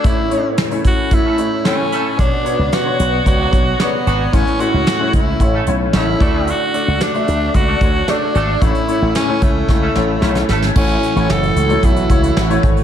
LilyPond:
<<
  \new Staff \with { instrumentName = "Alto saxophone" } { \time 4/4 \key a \major \tempo 4 = 112 e'4 r8 fis'8 e'4 cis'4 | d'4 fis'4 fis'4 b4 | cis'8 fis'4 e'4 r8 e'4 | fis'4 d'4 fis'4 d'4 |
e'4 cis'8 a2 r8 | cis'4 a'4 e'4. r8 | }
  \new Staff \with { instrumentName = "Grand piano" } { \time 4/4 \key a \major <a cis' e' cis''>16 r16 <a cis' e' cis''>8 r16 <a cis' e' cis''>8 r16 <a cis' e' cis''>16 r16 <a cis' e' cis''>16 r16 <a cis' e' cis''>8. r16 | <b d' fis' cis''>16 r16 <b d' fis' cis''>8 r16 <b d' fis' cis''>8 r16 <b d' fis' cis''>16 r16 <b d' fis' cis''>16 r16 <b d' fis' cis''>8. r16 | <a cis' e' cis''>16 r16 <a cis' e' cis''>8 r16 <a cis' e' cis''>8 r16 <a cis' e' cis''>16 r16 <a cis' e' cis''>16 r16 <a cis' e' cis''>8 <a d' fis' d''>8~ | <a d' fis' d''>16 r16 <a d' fis' d''>8 r16 <a d' fis' e''>8 r16 <a d' fis' d''>16 r16 <a d' fis' cis''>16 r16 <a d' fis' d''>8. r16 |
<a cis' e' cis''>16 r16 <a cis' e' cis''>8 r16 <a cis' e' cis''>8 r16 <a cis' e' cis''>16 r16 <a cis' e' cis''>16 r16 <a cis' e' cis''>8. r16 | <a e' fis' cis''>8 r16 <a e' fis' cis''>8. r16 <a e' fis' cis''>8 r16 <a e' fis' cis''>8 r16 <a e' fis' cis''>8 r16 | }
  \new Staff \with { instrumentName = "Grand piano" } { \clef bass \time 4/4 \key a \major a,4. r2 r8 | b,4. r2 r8 | a,4. r2 d8~ | d4 r2. |
a,4. r2 r8 | a,4. r2 r8 | }
  \new Staff \with { instrumentName = "Horn section" } { \time 4/4 \key a \major r2 r16 <a cis' e' a'>16 r8 <a cis' e' a'>16 r16 <a cis' e' a'>8 | r2 r16 <fis d' fis'>16 r8 <fis d' fis'>16 r16 <fis d' fis'>8 | r2 r16 <a cis' e' a'>16 r8 <a cis' e' a'>16 r16 <a d' fis' a'>8~ | <a d' fis' a'>16 r2 <a d' fis' a'>16 r8 <a d' fis' a'>16 r16 <a d' fis' a'>8 |
r2 r16 <a cis' e' a'>16 r8 <a cis' e' a'>16 r16 <a cis' e' a'>8 | r1 | }
  \new Staff \with { instrumentName = "Analog synth pad" } { \time 4/4 \key a \major r1 | r1 | r1 | r1 |
r1 | <e a fis'>1 | }
  \new Staff \with { instrumentName = "Slap bass" } { \clef bass \time 4/4 \key a \major r1 | b,,16 r8 cis,16 r8 b,,8 cis,8 b,,8 r8 gis,,8 | a,,16 r8 cis,16 r8 cis,8 a,,8 b,,8 a,,8 d,8~ | d,16 r8 cis,16 r8 d,8 cis,8 d,8 r8 gis,,8 |
a,,16 r8 a,,16 r8 cis,8 cis,8 a,,8 b,,8 gis,,8 | a,,8 r16 a,,16 fis,,8 cis,8 b,,8 cis,8 a,,8 gis,,8 | }
  \new DrumStaff \with { instrumentName = "Drums" } \drummode { \time 4/4 <hh bd>8 hh8 <hh sn>16 hh16 <hh bd>8 <hh bd>8 hh8 <hh sn>8 hh8 | <hh bd>8 hh8 <hh sn>8 hh8 <hh bd>8 <hh bd>8 <hh sn>8 hh8 | <hh bd>16 hh16 hh8 <hh sn>8 <hh bd>8 <hh bd>8 hh8 <hh sn>8 <hh bd>8 | hh8 hh8 <hh sn>16 hh16 hh8 <hh bd>8 <hh bd>8 <hh sn>8 hh8 |
<hh bd>16 hh16 hh8 <hh sn>8 <hh bd>8 <bd sn>8 sn8 sn16 sn16 sn16 sn16 | <cymc bd>16 hh16 hh16 hh16 sn16 hh16 hh16 hh16 <hh bd>16 hh16 <hh bd>16 hh16 sn16 hh16 <hh bd>16 hh16 | }
>>